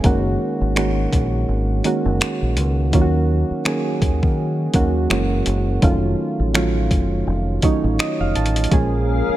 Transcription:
0.04 F#1 D#3 G#3 A#3 C#4 F#4, kick, closed hi-hat
0.61 G#1
0.76 D#3 G#3 A#3 C#4 F#4, finger snap, closed hi-hat
1.13 A#1, kick, closed hi-hat
1.49 G#1
1.84 D#3 G#3 A#3 C#4 F#4, closed hi-hat
2.06 F#1
2.21 finger snap, closed hi-hat
2.42 A#1
2.57 C#2, closed hi-hat
2.93 D#2 D#3 F#3 A#3 C#4 F4, kick, closed hi-hat
3.02 F#4
3.50 muted fingered electric bass stroke
3.65 D#3 F#3 A#3 C#4 G#4, finger snap, closed hi-hat
4.02 D#2, kick, closed hi-hat
4.23 D#3, kick
4.73 D#2 D#3 F#3 A#3 C#4 F#4, kick, closed hi-hat
5.10 F#1 E3 G#3 A#3 C#4 F#4, finger snap, closed hi-hat
5.46 F#1, closed hi-hat
5.82 F1 D#3 F#3 A3 C#4 F4, kick, closed hi-hat
6.39 A1
6.54 D#3 F#3 A3 C#4 F4, finger snap, closed hi-hat
6.91 F#1, kick, closed hi-hat
7.27 F1
7.62 D#3 F#3 A3 C#4 D#4 C#5, kick, closed hi-hat
7.84 A1
7.99 D#5, finger snap, closed hi-hat
8.20 F1 F5
8.35 A1 A5, closed hi-hat
8.46 closed hi-hat
8.56 closed hi-hat
8.64 closed hi-hat
8.71 A#1 F3 G#3 A#3 C#4 G#4 A#4 F5, kick, closed hi-hat
9.29 muted fingered electric bass stroke

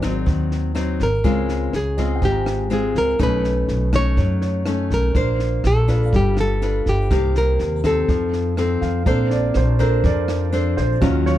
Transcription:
Already playing: G#1 G#2 D5
0.02 F#3 C4 D#4, kick, cross-stick, snare
0.26 D#2 D#3, kick, snare
0.51 snare
0.75 F#3 C4 D#4, cross-stick, snare
1.00 G#1 A#4, kick, snare
1.24 C#2 C#3 G#3 C4 F4, kick, snare
1.49 snare
1.73 C#2 G#4, cross-stick, snare
1.97 G#3 C4 F4 D#5, kick, snare
2.15 G5
2.22 G#1 G#2 G4, kick, snare
2.32 A#5
2.46 cross-stick, snare
2.70 G#3 C4 F4 G#4, snare
2.95 C#2 A#4, kick, snare
3.19 B1 B2 A3 C#4 D#4, kick, cross-stick, snare
3.23 B4
3.44 snare
3.68 B1, snare
3.93 A3 C#4 D#4 C#5, kick, cross-stick, snare
4.17 F#2 F#3, kick, snare
4.41 C#5, snare
4.66 A3 C#4 D#4, cross-stick, snare
4.90 B1 A#4, kick, snare
5.14 A#1 A#3 D4 C5, kick, snare
5.39 snare
5.64 A#1 A4, cross-stick, snare
5.88 D4 F4 B4 D5, kick, snare
6.05 F5
6.13 G1 G3 G4, kick, snare
6.37 A4, cross-stick, snare
6.62 D4 F4 B4, snare
6.86 G1 G4, kick, snare
7.11 C2 C3 A#3 D#4 G4, kick, cross-stick, snare
7.35 A#4, snare
7.59 D#2, snare
7.84 C4 D#4 A4, kick, cross-stick, snare
8.08 F2 F3, kick, snare
8.33 snare
8.57 C4 D#4 A4, cross-stick, snare
8.81 F2 F5, kick, snare
9.06 A#1 A#3 C4 D4 A4 C5, kick, snare
9.31 D5, snare
9.54 A#1 C5, cross-stick, snare
9.79 D4 A4 A#4 C5, kick, snare
10.04 F2 F3 D5, kick, snare
10.28 cross-stick, snare
10.52 D4 A4 C5, snare
10.77 A#1 C5, kick, snare
11.01 D#2 D#3 F#3 C#4 F4, kick, cross-stick, snare
11.26 C#5, snare

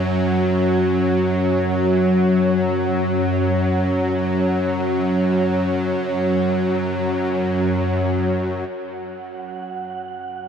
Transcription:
Already playing: F#2 F#3 C#4 F#4 C#5
8.71 F#2 F#3 C#4 F#5
10.05 C#5

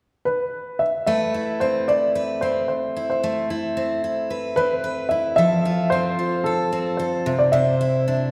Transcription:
0.25 B4
0.79 E5
1.06 A3 B4 E5
1.34 E4
1.60 C4 C5
1.88 E4 D5
2.15 B4
2.41 C4 C5
2.68 C5
2.96 E4
3.10 C5
3.24 A3
3.50 E4
3.77 C4
4.04 E4
4.30 B4
4.56 C4 B4
4.84 B4
5.09 E4 E5
5.36 F3 A4 E5
5.65 F4
5.90 C4 C5
6.19 F4
6.44 A4
6.72 C4
6.97 A4 C5
7.26 C3
7.39 D5
7.52 C3 C5 E5
7.81 E4
8.08 D4

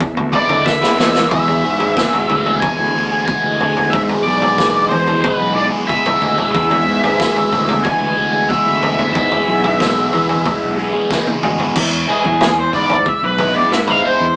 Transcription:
Already playing: E2 B3 E4 G#4 E5
0.00 kick, floor tom
0.17 D2, floor tom
0.32 E3 G#3 B3 E4 D5, floor tom
0.49 D3 E3 G#3 B3 E4, floor tom
0.66 E5, kick, snare
0.81 E3 G#3 B3 E4, snare
0.98 E2 E3 G#3 B3 E4, snare
1.16 snare
1.30 E2 B2 E3 G#3 B3 E4 G#4 E5, kick, floor tom
1.48 E3 G#3 B3 G#4, floor tom
1.63 G#2 E3 G#3 B3 G#4
1.80 E3 G#3 B3 G#4, floor tom
1.96 E2 B2 E3 G#3 B3 G#4, kick, snare
2.13 floor tom
2.29 D2 E3 G#3 B3 G#4, floor tom, mid tom
2.46 E3 G#3 B3 G#4, floor tom
2.60 G#5, kick, floor tom
2.79 D2
2.95 D2 E3 G#3 B3 G#4
3.12 E3 G#3 B3 G#4
3.26 E2 B2 E3 G#3 B3 G#4 G#5, kick
3.44 D2
3.60 E3 G#3 B3 G#4, floor tom
3.77 E3 G#3 B3 G#4, floor tom
3.90 E2 G#2 B2 E3 E5, kick, floor tom
3.95 G#3 B3 G#4
4.09 E3 G#3 B3 G#4, floor tom
4.23 B1 E3 G#3 D5
4.27 B3 G#4
4.42 E3 G#3 B3 G#4, floor tom
4.58 E2 B2 E3 G#3 B3 G#4, kick, snare
4.88 E3 G#3 C5, floor tom
4.92 E3 B3 G#4
5.07 E3 G#3 B3 G#4, floor tom
5.22 B4, kick, floor tom, mid tom
5.40 B1
5.55 E3 G#3 B3 G#4 D5
5.72 E3 G#3 B3 G#4
5.87 E2 B2 E3 G#3 B3 G#4 E5, kick
6.06 floor tom, mid tom
6.20 D2 E3 G#3 B3 G#4, floor tom
6.37 E3 G#3 B3 G#4, floor tom
6.52 E2 B2 E3 G#3 B3 G#4 E5, kick, floor tom
6.70 E3 G#3 B3 G#4, floor tom
6.86 G#2 E3 G#3 B3 G#4
7.03 E3 G#3 B3 G#4, floor tom
7.19 E2 B2 E3 G#3 B3 G#4, kick, snare
7.36 floor tom
7.52 D2 E3 G#3 B3 G#4, floor tom, mid tom
7.68 E3 G#3 B3 G#4, floor tom
7.83 G#5, kick, floor tom
8.02 D2
8.17 D2 E3 G#3 B3 G#4
8.32 E3 G#3 B3 G#4 G#5
8.49 E2 B2 E3 G#3 B3 G#4 E5, kick
8.67 D2
8.83 E3 G#3 B3 G#4, floor tom
8.99 E3 G#3 B3 G#4, floor tom
9.14 E2 G#2 B2 E3 G#3 B3 G#4 E5, kick, floor tom
9.32 E3 G#3 B3 G#4, floor tom
9.48 B1 E3 G#3 B3 G#4
9.64 E3 G#3 B3 G#4, floor tom
9.80 E2 B2 E3 G#3 B3 G#4, kick, snare
10.13 E3 G#3 B3 G#4, floor tom
10.29 E3 G#3 B3 G#4, floor tom
10.45 kick, floor tom, mid tom
10.63 B1
10.78 E3 G#3 B3 G#4
10.93 E3 G#3 B3 G#4
11.10 E2 B2 E3 G#3 B3 G#4, kick, snare
11.27 high tom
11.43 D2 E3 G#3 B3 G#4, mid tom
11.59 E3 G#3 B3 G#4, floor tom
11.76 E2 G#3 E4 B5, kick, floor tom, crash
12.09 E3 G#3 B3 E4 G#4
12.25 E2, muted overdriven electric guitar stroke, mid tom
12.41 muted overdriven electric guitar stroke, snare, floor tom
12.59 C5
12.73 G#2 E3 G#3 B3 E4 D5, kick
12.89 floor tom
13.06 E5, kick
13.23 B1 B4
13.38 E3 G#3 B3 E4, floor tom
13.54 E3 G#3 B3 E4 D5
13.71 G#2 E5, snare
13.87 E3 G#3 B3 E4 F5, floor tom
14.03 E3 G#3 B3 E4 C5
14.20 E2

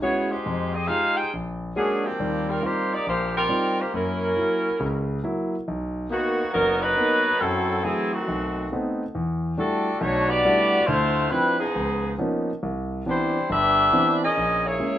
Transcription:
0.02 G#3 B3 C#4 E4 F#4 G#4 C#5
0.31 G#3 D#4 G4 C5
0.46 F2
0.74 C4 G4 G#4 D#5
0.88 G#3 D#4 F4 G4 G#4 C5 F5
1.17 D#4 G#4 C5 G5
1.33 A#1
1.76 F#3 G#3 A#3 C#4 D4 F#4 G#4
2.06 F3 A#3 C4 G4
2.20 D#2 G3
2.50 G3 C4 F4 A#4
2.62 G3 A#3 C4 D#4 F4 G4 C5
2.94 A#3 D#4 G4 D5
3.06 A#1 A#3 F4 G4 C5
3.37 G3 C4 F4 A#4
3.49 G3 C4 D#4 F4
3.80 A#3 F4 G4 C5
3.94 F#2 F#3 A#3 C#4 E4 A#4
4.37 F#3 A#3 E4
4.80 C#2 C#3
5.24 F#3 A#3 E4
5.68 B1
6.10 D#3 A#3 B3 D#4 F#4
6.53 F#1 F#3 B3 D#4 A#4
6.83 F#3 D#4 A#4 B4
6.97 A#3 B3 D#4
7.41 F#2 F#3 C4 E4 A4
7.85 E3 F#3 A3 C4 E4 G#4
8.13 D#3 A3 C4 F#4
8.28 B1
8.72 A3 B3 C4 D#4
9.15 E2
9.58 G3 A3 D4 E4 F#4 A4
10.00 B1 B2 A3 D4 F#4 C#5
10.29 B3 F#4 G4 D5
10.45 G3 A3 D4 E4 F#4
10.87 D2 D3 A3 E4 F4 C5
11.31 F3 G3 C4 D4 E4 B4
11.60 F3 B3 D#4 G#4
11.76 C#2
12.18 F3 A#3 B3 C#4 D#4
12.63 C2
13.06 E3 G3 B3 C4 D4 E4 C5
13.50 G1 D4 G4 B4 E5
13.93 E3 B3 C4 D4
14.24 C#4 G#4 A#4 D#5
14.37 A#1
14.67 A#3 E4 G#4 C#5
14.80 G#3 A#3 C#4

